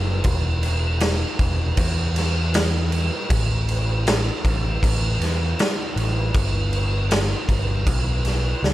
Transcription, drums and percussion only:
0.24 kick, crash
0.63 crash
1.00 snare, crash
1.39 kick, crash
1.77 kick, crash
2.16 snare, crash
2.54 snare, crash
2.92 crash
3.30 kick, crash
3.68 crash
4.07 snare, crash
4.45 kick, crash
4.83 kick, crash
5.21 snare, crash
5.59 snare, crash
5.97 crash
6.34 kick, crash
6.73 crash
7.11 snare, crash
7.49 kick, crash
7.87 kick, crash
8.25 snare, crash
8.64 snare

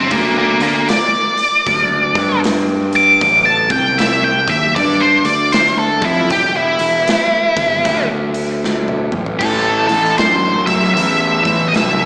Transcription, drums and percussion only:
0.11 kick, open hi-hat
0.60 open hi-hat
0.89 snare, open hi-hat
1.38 open hi-hat
1.66 kick, open hi-hat
2.15 kick, open hi-hat
2.44 snare, open hi-hat
2.93 open hi-hat
3.21 kick, open hi-hat
3.70 kick, open hi-hat
3.99 snare, open hi-hat
4.48 kick, open hi-hat
4.76 kick, open hi-hat
5.25 open hi-hat
5.53 snare, open hi-hat
6.02 kick, open hi-hat
6.30 kick, open hi-hat
6.79 open hi-hat
7.08 snare, open hi-hat
7.57 kick, open hi-hat
7.85 kick, open hi-hat
8.34 open hi-hat
8.64 snare
8.88 high tom
9.12 mid tom
9.26 floor tom
9.41 kick, crash
9.89 open hi-hat
10.05 snare
10.18 snare, open hi-hat
10.67 kick, open hi-hat
10.84 snare
10.97 open hi-hat
11.45 kick, open hi-hat
11.74 snare, open hi-hat

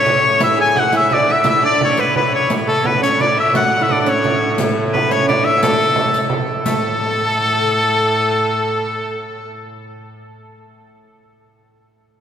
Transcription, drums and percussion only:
0.06 riq, frame drum
0.40 riq, frame drum
0.59 frame drum
0.77 frame drum
0.93 riq
1.10 riq, frame drum
1.44 riq, frame drum
1.81 frame drum
1.97 riq
2.16 frame drum
2.33 frame drum
2.50 riq, frame drum
2.67 frame drum
2.85 frame drum
3.04 riq
3.20 riq, frame drum
3.55 riq, frame drum
3.72 frame drum
3.89 frame drum
4.06 riq
4.24 riq, frame drum
4.58 riq, frame drum
4.78 frame drum
4.95 frame drum
5.11 riq
5.29 riq, frame drum
5.63 riq, frame drum
5.79 riq, frame drum
5.96 riq, frame drum
6.14 riq, frame drum
6.30 frame drum
6.65 riq, frame drum

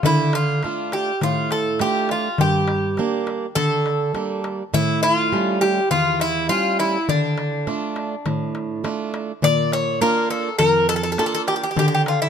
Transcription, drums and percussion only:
0.03 darbuka dum
0.33 darbuka tek
0.63 darbuka tek
0.92 darbuka tek
1.07 darbuka tek
1.21 darbuka tek, darbuka dum
1.51 darbuka tek
1.65 darbuka tek
1.79 darbuka tek
2.09 darbuka tek
2.38 darbuka dum
2.68 darbuka tek
2.97 darbuka tek
3.27 darbuka tek
3.56 darbuka tek, darbuka dum
3.86 darbuka tek
4.00 darbuka tek
4.15 darbuka tek
4.44 darbuka tek
4.74 darbuka dum
5.03 darbuka tek
5.33 darbuka tek
5.62 darbuka tek
5.76 darbuka tek
5.91 darbuka tek, darbuka dum
6.20 darbuka tek
6.35 darbuka tek
6.50 darbuka tek
6.79 darbuka tek
7.09 darbuka dum
7.24 darbuka tek
7.38 darbuka tek
7.53 darbuka tek
7.67 darbuka tek
7.82 darbuka tek
7.96 darbuka tek
8.26 darbuka tek, darbuka dum
8.55 darbuka tek
8.84 darbuka tek
9.14 darbuka tek
9.43 darbuka dum
9.72 darbuka tek
10.01 darbuka tek
10.30 darbuka tek
10.59 darbuka tek, darbuka dum
10.89 darbuka tek
11.03 darbuka tek
11.18 darbuka tek
11.47 darbuka tek
11.77 darbuka dum
12.06 darbuka tek

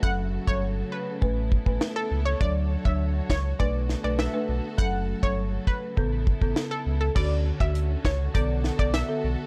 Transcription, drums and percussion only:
0.03 kick
0.48 kick
1.22 kick
1.52 kick
1.66 kick
1.81 cross-stick, snare
2.41 kick
2.85 kick
3.30 kick, snare
3.60 kick
3.89 snare
4.19 cross-stick, snare
4.78 kick
5.23 kick
5.67 kick
5.97 kick
6.27 kick
6.42 kick
6.56 snare
7.16 kick, crash
7.60 kick
7.75 closed hi-hat
8.05 kick, snare
8.35 kick, closed hi-hat
8.64 snare
8.79 kick
8.94 snare, closed hi-hat

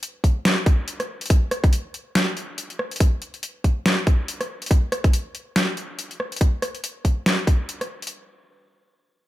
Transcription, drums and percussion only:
0.03 closed hi-hat
0.24 kick, closed hi-hat
0.45 snare, closed hi-hat
0.66 kick, closed hi-hat
0.88 closed hi-hat
1.00 cross-stick, closed hi-hat
1.21 closed hi-hat
1.26 closed hi-hat
1.30 kick, closed hi-hat
1.51 cross-stick, closed hi-hat
1.64 kick, closed hi-hat
1.73 closed hi-hat
1.94 closed hi-hat
2.15 snare, closed hi-hat
2.37 closed hi-hat
2.58 closed hi-hat
2.70 closed hi-hat
2.79 cross-stick
2.91 closed hi-hat
2.96 closed hi-hat
3.00 kick, closed hi-hat
3.22 closed hi-hat
3.34 closed hi-hat
3.43 closed hi-hat
3.64 kick, closed hi-hat
3.86 snare, closed hi-hat
4.07 kick, closed hi-hat
4.28 closed hi-hat
4.41 cross-stick, closed hi-hat
4.62 closed hi-hat
4.66 closed hi-hat
4.71 kick, closed hi-hat
4.92 cross-stick, closed hi-hat
5.04 kick, closed hi-hat
5.13 closed hi-hat
5.35 closed hi-hat
5.56 snare, closed hi-hat
5.77 closed hi-hat
5.99 closed hi-hat
6.11 closed hi-hat
6.20 cross-stick
6.32 closed hi-hat
6.36 closed hi-hat
6.41 kick, closed hi-hat
6.62 cross-stick, closed hi-hat
6.75 closed hi-hat
6.84 closed hi-hat
7.05 kick, closed hi-hat
7.26 snare, closed hi-hat
7.47 kick, closed hi-hat
7.69 closed hi-hat
7.81 cross-stick, closed hi-hat
8.02 closed hi-hat
8.07 closed hi-hat

